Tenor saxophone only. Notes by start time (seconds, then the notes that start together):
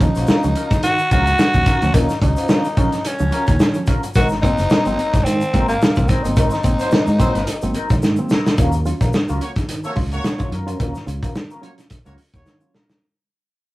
0.02 D#4
0.84 F#4
1.12 F#4
1.94 D#4
2.21 D#4
3.06 C#4
4.16 F#4
4.42 D#4
5.24 C4
5.68 A#3
6.08 C4
6.22 D#4